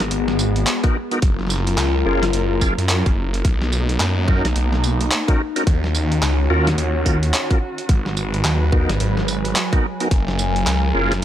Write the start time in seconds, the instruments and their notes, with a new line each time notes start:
Already playing: string section G#3 B3 F#4, ambient pad B3 G#4
0.00 detuned saw bass G#1, snare, closed hi-hat
0.11 detuned saw bass G#1, closed hi-hat
0.28 snare
0.39 tambourine
0.56 closed hi-hat
0.67 clap, closed hi-hat
0.84 tonewheel organ B3 D#4 F#4 A#4, kick, closed hi-hat
1.11 tonewheel organ B3 D#4 F#4 A#4, closed hi-hat
1.22 detuned saw bass F#1, string section F#3 F4 A#4, ambient pad F4, kick, closed hi-hat
1.34 ambient pad A#4
1.39 snare
1.47 snare, tambourine
1.56 snare
1.67 closed hi-hat
1.78 detuned saw bass C#2, clap, closed hi-hat
2.05 detuned saw bass F#1, tonewheel organ C#4 F4 G#4 A#4
2.23 snare, closed hi-hat
2.33 detuned saw bass F#1, closed hi-hat
2.61 tonewheel organ C#4 F4 G#4 A#4, kick, tambourine
2.78 detuned saw bass F#2, closed hi-hat
2.89 clap, closed hi-hat
3.06 detuned saw bass F#1, kick, closed hi-hat
3.34 closed hi-hat
3.45 detuned saw bass B1, string section A#3 B3 D#4, ambient pad D#4, kick, closed hi-hat
3.62 snare
3.72 tambourine
3.89 closed hi-hat
4.00 detuned saw bass F#2, clap, closed hi-hat
4.08 ambient pad A#5
4.28 tonewheel organ C#4 D#4 F#4 A#4, kick
4.45 detuned saw bass B1, snare, closed hi-hat
4.56 detuned saw bass B1, closed hi-hat
4.73 snare
4.84 tambourine
5.01 closed hi-hat
5.11 clap, closed hi-hat
5.28 tonewheel organ C#4 D#4 F#4 A#4, kick, closed hi-hat
5.56 tonewheel organ C#4 D#4 F#4 A#4, closed hi-hat
5.67 detuned saw bass D#2, string section D#3 C#4 F#4, kick, closed hi-hat
5.84 ambient pad C#5, snare
5.95 tambourine
6.09 ambient pad F#5, closed hi-hat
6.22 detuned saw bass C#2, clap
6.50 detuned saw bass D#2, tonewheel organ C#4 F4 F#4 A#4
6.67 snare, closed hi-hat
6.78 detuned saw bass D#2, closed hi-hat
7.06 tonewheel organ C#4 F4 F#4 A#4, kick, tambourine
7.23 closed hi-hat
7.34 clap, closed hi-hat
7.51 tonewheel organ C#4 F4 F#4 A#4, kick, closed hi-hat
7.78 closed hi-hat
7.89 detuned saw bass G#1, ambient pad F#3, string section G#3 B4, kick, closed hi-hat
7.99 ambient pad B4
8.06 snare
8.17 tambourine
8.34 closed hi-hat
8.45 detuned saw bass D#2, clap, closed hi-hat
8.72 tonewheel organ B3 D#4 F#4 A#4, kick
8.89 detuned saw bass G#1, ambient pad G#5, snare, closed hi-hat
9.00 detuned saw bass G#1, closed hi-hat
9.17 snare
9.28 tambourine
9.45 closed hi-hat
9.56 clap, closed hi-hat
9.73 tonewheel organ B3 D#4 F#4 A#4, kick, closed hi-hat
10.00 tonewheel organ B3 D#4 F#4 A#4, closed hi-hat
10.11 detuned saw bass F#1, string section F#3 F4 A#4, kick, closed hi-hat
10.28 snare
10.39 tambourine
10.55 ambient pad F5, closed hi-hat
10.67 detuned saw bass C#2, clap, closed hi-hat
10.94 detuned saw bass F#1, tonewheel organ C#4 F4 G#4 A#4
11.07 ambient pad A#5
11.12 snare, closed hi-hat